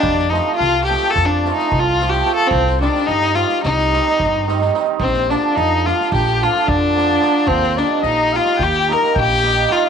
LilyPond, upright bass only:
\new Staff \with { instrumentName = "Upright bass" } { \clef bass \time 9/8 \key bes \major \tempo 4. = 73 f,4 c,4 f,4 c,4. | c,4 g,4 c,4 g,4. | bes,,4 f,4 bes,,4 f,4. | ees,4 bes,,4 ees,4 bes,,4. | }